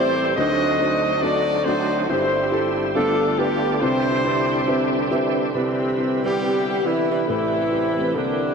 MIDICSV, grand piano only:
0, 0, Header, 1, 2, 480
1, 0, Start_track
1, 0, Key_signature, 0, "major"
1, 0, Tempo, 432900
1, 406, Time_signature, 4, 2, 24, 8
1, 9474, End_track
2, 0, Start_track
2, 0, Title_t, "Grand piano"
2, 0, Program_c, 0, 0
2, 0, Note_on_c, 0, 33, 65
2, 0, Note_on_c, 0, 45, 61
2, 0, Note_on_c, 0, 57, 74
2, 0, Note_on_c, 0, 60, 70
2, 0, Note_on_c, 0, 64, 63
2, 0, Note_on_c, 0, 67, 69
2, 0, Note_on_c, 0, 74, 85
2, 265, Note_off_c, 0, 57, 0
2, 268, Note_off_c, 0, 60, 0
2, 269, Note_off_c, 0, 64, 0
2, 272, Note_off_c, 0, 67, 0
2, 275, Note_off_c, 0, 74, 0
2, 362, Note_off_c, 0, 45, 0
2, 363, Note_off_c, 0, 33, 0
2, 403, Note_on_c, 0, 57, 74
2, 407, Note_on_c, 0, 62, 62
2, 410, Note_on_c, 0, 63, 67
2, 412, Note_on_c, 0, 38, 69
2, 412, Note_on_c, 0, 50, 61
2, 416, Note_on_c, 0, 66, 66
2, 422, Note_on_c, 0, 72, 81
2, 746, Note_off_c, 0, 57, 0
2, 748, Note_off_c, 0, 62, 0
2, 749, Note_off_c, 0, 63, 0
2, 752, Note_off_c, 0, 66, 0
2, 755, Note_off_c, 0, 72, 0
2, 873, Note_on_c, 0, 57, 70
2, 878, Note_on_c, 0, 62, 75
2, 884, Note_on_c, 0, 63, 73
2, 886, Note_on_c, 0, 66, 69
2, 892, Note_on_c, 0, 72, 81
2, 1220, Note_off_c, 0, 57, 0
2, 1223, Note_off_c, 0, 62, 0
2, 1226, Note_off_c, 0, 63, 0
2, 1227, Note_off_c, 0, 66, 0
2, 1229, Note_off_c, 0, 72, 0
2, 1356, Note_on_c, 0, 57, 82
2, 1358, Note_on_c, 0, 62, 73
2, 1366, Note_on_c, 0, 63, 64
2, 1371, Note_on_c, 0, 66, 69
2, 1374, Note_on_c, 0, 75, 90
2, 1701, Note_off_c, 0, 57, 0
2, 1701, Note_off_c, 0, 62, 0
2, 1706, Note_off_c, 0, 63, 0
2, 1708, Note_off_c, 0, 66, 0
2, 1709, Note_off_c, 0, 75, 0
2, 1831, Note_on_c, 0, 57, 77
2, 1838, Note_on_c, 0, 62, 74
2, 1842, Note_on_c, 0, 63, 74
2, 1846, Note_on_c, 0, 66, 69
2, 1852, Note_on_c, 0, 74, 89
2, 2177, Note_off_c, 0, 57, 0
2, 2180, Note_off_c, 0, 62, 0
2, 2183, Note_off_c, 0, 63, 0
2, 2185, Note_off_c, 0, 66, 0
2, 2188, Note_off_c, 0, 74, 0
2, 2277, Note_off_c, 0, 38, 0
2, 2277, Note_off_c, 0, 50, 0
2, 2314, Note_on_c, 0, 64, 70
2, 2323, Note_on_c, 0, 31, 59
2, 2323, Note_on_c, 0, 43, 70
2, 2324, Note_on_c, 0, 67, 65
2, 2334, Note_on_c, 0, 72, 78
2, 2658, Note_off_c, 0, 64, 0
2, 2663, Note_off_c, 0, 67, 0
2, 2668, Note_off_c, 0, 72, 0
2, 2789, Note_on_c, 0, 64, 79
2, 2796, Note_on_c, 0, 67, 80
2, 2807, Note_on_c, 0, 69, 96
2, 3134, Note_off_c, 0, 64, 0
2, 3138, Note_off_c, 0, 67, 0
2, 3144, Note_off_c, 0, 69, 0
2, 3233, Note_off_c, 0, 31, 0
2, 3233, Note_off_c, 0, 43, 0
2, 3269, Note_on_c, 0, 59, 79
2, 3273, Note_on_c, 0, 65, 73
2, 3275, Note_on_c, 0, 67, 68
2, 3276, Note_on_c, 0, 31, 65
2, 3278, Note_on_c, 0, 43, 61
2, 3283, Note_on_c, 0, 69, 69
2, 3287, Note_on_c, 0, 74, 80
2, 3614, Note_off_c, 0, 59, 0
2, 3616, Note_off_c, 0, 65, 0
2, 3617, Note_off_c, 0, 67, 0
2, 3621, Note_off_c, 0, 69, 0
2, 3623, Note_off_c, 0, 74, 0
2, 3741, Note_on_c, 0, 59, 76
2, 3746, Note_on_c, 0, 65, 72
2, 3753, Note_on_c, 0, 67, 78
2, 3754, Note_on_c, 0, 69, 72
2, 3762, Note_on_c, 0, 71, 80
2, 4089, Note_off_c, 0, 59, 0
2, 4091, Note_off_c, 0, 65, 0
2, 4095, Note_off_c, 0, 67, 0
2, 4096, Note_off_c, 0, 69, 0
2, 4100, Note_off_c, 0, 71, 0
2, 4188, Note_off_c, 0, 31, 0
2, 4189, Note_off_c, 0, 43, 0
2, 4222, Note_on_c, 0, 60, 80
2, 4224, Note_on_c, 0, 64, 66
2, 4227, Note_on_c, 0, 48, 60
2, 4229, Note_on_c, 0, 67, 73
2, 4230, Note_on_c, 0, 36, 70
2, 4234, Note_on_c, 0, 71, 63
2, 4240, Note_on_c, 0, 74, 78
2, 4569, Note_off_c, 0, 60, 0
2, 4570, Note_off_c, 0, 64, 0
2, 4573, Note_off_c, 0, 67, 0
2, 4575, Note_off_c, 0, 71, 0
2, 4578, Note_off_c, 0, 74, 0
2, 4703, Note_on_c, 0, 60, 76
2, 4706, Note_on_c, 0, 64, 68
2, 4710, Note_on_c, 0, 67, 74
2, 4718, Note_on_c, 0, 71, 67
2, 4722, Note_on_c, 0, 74, 87
2, 5050, Note_off_c, 0, 60, 0
2, 5051, Note_off_c, 0, 64, 0
2, 5053, Note_off_c, 0, 67, 0
2, 5057, Note_off_c, 0, 71, 0
2, 5059, Note_off_c, 0, 74, 0
2, 5176, Note_on_c, 0, 60, 93
2, 5183, Note_on_c, 0, 64, 85
2, 5187, Note_on_c, 0, 67, 84
2, 5195, Note_on_c, 0, 71, 78
2, 5196, Note_on_c, 0, 76, 87
2, 5526, Note_off_c, 0, 60, 0
2, 5530, Note_off_c, 0, 64, 0
2, 5532, Note_off_c, 0, 67, 0
2, 5536, Note_off_c, 0, 71, 0
2, 5536, Note_off_c, 0, 76, 0
2, 5659, Note_on_c, 0, 60, 100
2, 5664, Note_on_c, 0, 64, 80
2, 5668, Note_on_c, 0, 67, 83
2, 5672, Note_on_c, 0, 71, 76
2, 5677, Note_on_c, 0, 76, 96
2, 6008, Note_off_c, 0, 60, 0
2, 6011, Note_off_c, 0, 64, 0
2, 6013, Note_off_c, 0, 67, 0
2, 6015, Note_off_c, 0, 71, 0
2, 6017, Note_off_c, 0, 76, 0
2, 6105, Note_off_c, 0, 48, 0
2, 6106, Note_off_c, 0, 36, 0
2, 6138, Note_on_c, 0, 60, 72
2, 6142, Note_on_c, 0, 64, 73
2, 6146, Note_on_c, 0, 36, 47
2, 6147, Note_on_c, 0, 48, 46
2, 6148, Note_on_c, 0, 71, 62
2, 6154, Note_on_c, 0, 74, 78
2, 6488, Note_off_c, 0, 60, 0
2, 6491, Note_off_c, 0, 64, 0
2, 6494, Note_off_c, 0, 71, 0
2, 6497, Note_off_c, 0, 74, 0
2, 6617, Note_on_c, 0, 60, 63
2, 6622, Note_on_c, 0, 64, 56
2, 6630, Note_on_c, 0, 71, 64
2, 6637, Note_on_c, 0, 74, 72
2, 6811, Note_off_c, 0, 60, 0
2, 6813, Note_off_c, 0, 64, 0
2, 6817, Note_off_c, 0, 71, 0
2, 6821, Note_off_c, 0, 74, 0
2, 6908, Note_on_c, 0, 60, 54
2, 6916, Note_on_c, 0, 64, 58
2, 6922, Note_on_c, 0, 71, 56
2, 6926, Note_on_c, 0, 74, 66
2, 7039, Note_off_c, 0, 60, 0
2, 7043, Note_off_c, 0, 64, 0
2, 7047, Note_off_c, 0, 71, 0
2, 7048, Note_off_c, 0, 74, 0
2, 7105, Note_on_c, 0, 60, 57
2, 7111, Note_on_c, 0, 64, 61
2, 7116, Note_on_c, 0, 71, 51
2, 7126, Note_on_c, 0, 74, 62
2, 7455, Note_off_c, 0, 60, 0
2, 7457, Note_off_c, 0, 64, 0
2, 7460, Note_off_c, 0, 71, 0
2, 7465, Note_off_c, 0, 74, 0
2, 7585, Note_on_c, 0, 60, 66
2, 7591, Note_on_c, 0, 64, 57
2, 7599, Note_on_c, 0, 71, 59
2, 7605, Note_on_c, 0, 76, 72
2, 7936, Note_off_c, 0, 60, 0
2, 7939, Note_off_c, 0, 64, 0
2, 7943, Note_off_c, 0, 71, 0
2, 7946, Note_off_c, 0, 76, 0
2, 8032, Note_off_c, 0, 36, 0
2, 8033, Note_off_c, 0, 48, 0
2, 8068, Note_on_c, 0, 57, 72
2, 8073, Note_on_c, 0, 60, 65
2, 8077, Note_on_c, 0, 33, 55
2, 8079, Note_on_c, 0, 45, 55
2, 8081, Note_on_c, 0, 67, 67
2, 8091, Note_on_c, 0, 71, 77
2, 8419, Note_off_c, 0, 57, 0
2, 8422, Note_off_c, 0, 60, 0
2, 8426, Note_off_c, 0, 67, 0
2, 8430, Note_off_c, 0, 71, 0
2, 8549, Note_on_c, 0, 57, 64
2, 8558, Note_on_c, 0, 60, 54
2, 8565, Note_on_c, 0, 67, 56
2, 8570, Note_on_c, 0, 72, 71
2, 8742, Note_off_c, 0, 57, 0
2, 8746, Note_off_c, 0, 60, 0
2, 8750, Note_off_c, 0, 67, 0
2, 8753, Note_off_c, 0, 72, 0
2, 8835, Note_on_c, 0, 57, 73
2, 8844, Note_on_c, 0, 60, 69
2, 8847, Note_on_c, 0, 67, 59
2, 8853, Note_on_c, 0, 71, 80
2, 8969, Note_off_c, 0, 57, 0
2, 8973, Note_off_c, 0, 60, 0
2, 8975, Note_off_c, 0, 67, 0
2, 8977, Note_off_c, 0, 71, 0
2, 9000, Note_off_c, 0, 33, 0
2, 9001, Note_off_c, 0, 45, 0
2, 9030, Note_on_c, 0, 58, 63
2, 9035, Note_on_c, 0, 64, 54
2, 9038, Note_on_c, 0, 48, 55
2, 9040, Note_on_c, 0, 36, 54
2, 9041, Note_on_c, 0, 67, 54
2, 9046, Note_on_c, 0, 72, 68
2, 9383, Note_off_c, 0, 58, 0
2, 9386, Note_off_c, 0, 64, 0
2, 9389, Note_off_c, 0, 67, 0
2, 9391, Note_off_c, 0, 72, 0
2, 9474, Note_off_c, 0, 36, 0
2, 9474, Note_off_c, 0, 48, 0
2, 9474, End_track
0, 0, End_of_file